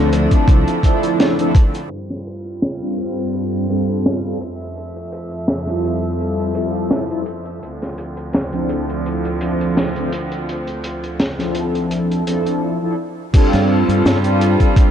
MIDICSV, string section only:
0, 0, Header, 1, 2, 480
1, 0, Start_track
1, 0, Key_signature, -1, "minor"
1, 0, Tempo, 714286
1, 1283, Time_signature, 4, 2, 24, 8
1, 10018, End_track
2, 0, Start_track
2, 0, Title_t, "String section"
2, 0, Program_c, 0, 48
2, 0, Note_on_c, 0, 50, 83
2, 0, Note_on_c, 0, 53, 93
2, 0, Note_on_c, 0, 57, 75
2, 0, Note_on_c, 0, 62, 79
2, 1258, Note_off_c, 0, 50, 0
2, 1259, Note_off_c, 0, 53, 0
2, 1260, Note_off_c, 0, 57, 0
2, 1267, Note_off_c, 0, 62, 0
2, 1285, Note_on_c, 0, 43, 75
2, 1285, Note_on_c, 0, 55, 68
2, 1285, Note_on_c, 0, 60, 68
2, 1287, Note_on_c, 0, 65, 82
2, 2947, Note_off_c, 0, 43, 0
2, 2947, Note_off_c, 0, 55, 0
2, 2947, Note_off_c, 0, 60, 0
2, 2948, Note_off_c, 0, 65, 0
2, 2960, Note_on_c, 0, 41, 71
2, 2960, Note_on_c, 0, 57, 66
2, 2962, Note_on_c, 0, 53, 64
2, 2962, Note_on_c, 0, 76, 81
2, 5100, Note_off_c, 0, 41, 0
2, 5100, Note_off_c, 0, 57, 0
2, 5101, Note_off_c, 0, 53, 0
2, 5101, Note_off_c, 0, 76, 0
2, 5122, Note_on_c, 0, 38, 75
2, 5124, Note_on_c, 0, 53, 87
2, 5124, Note_on_c, 0, 60, 70
2, 5125, Note_on_c, 0, 50, 70
2, 8455, Note_off_c, 0, 38, 0
2, 8457, Note_off_c, 0, 50, 0
2, 8457, Note_off_c, 0, 53, 0
2, 8457, Note_off_c, 0, 60, 0
2, 8964, Note_on_c, 0, 55, 85
2, 8964, Note_on_c, 0, 60, 79
2, 8964, Note_on_c, 0, 65, 91
2, 10018, Note_off_c, 0, 55, 0
2, 10018, Note_off_c, 0, 60, 0
2, 10018, Note_off_c, 0, 65, 0
2, 10018, End_track
0, 0, End_of_file